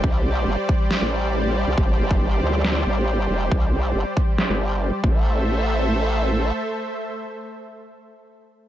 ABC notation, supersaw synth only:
X:1
M:4/4
L:1/8
Q:1/4=138
K:Am
V:1 name="Supersaw synth"
[G,Gcd]8- | [G,Gcd]8- | [G,Gcd]6- [G,Gcd] [A,Ace]- | [A,Ace]8- |
[A,Ace]8 |]